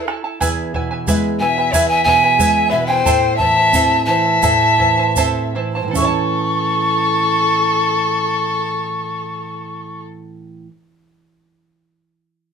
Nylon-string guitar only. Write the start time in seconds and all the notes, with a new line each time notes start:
0.40 E2
0.74 B2
1.07 G#3
1.40 B2
1.73 E2
2.06 B2
2.39 G#3
2.72 B2
3.05 A2
3.39 E3
3.73 C4
4.07 E3
4.42 A2
4.78 E3
5.16 C4
5.56 E3
5.83 A2
5.88 E3
5.93 C#4
5.98 A4
6.03 E5
6.08 A5